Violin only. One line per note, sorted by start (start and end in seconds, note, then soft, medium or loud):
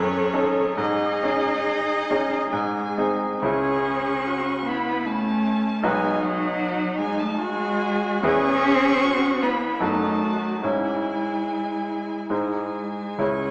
0.00 0.77 C#5 medium
0.78 2.48 D#5 medium
2.52 3.39 G#5 medium
3.44 4.69 C#6 medium
4.67 5.08 B5 medium
5.07 5.86 A5 medium
5.85 6.24 G#5 medium
6.22 6.98 F#5 medium
6.99 7.21 G#5 medium
7.19 7.40 A5 medium
7.38 8.24 G#5 medium
8.24 9.44 C#6 loud
9.43 9.85 B5 medium
9.83 10.66 A5 medium
10.65 12.31 G#5 medium
12.32 13.23 G#5 soft
13.22 13.51 C#6 medium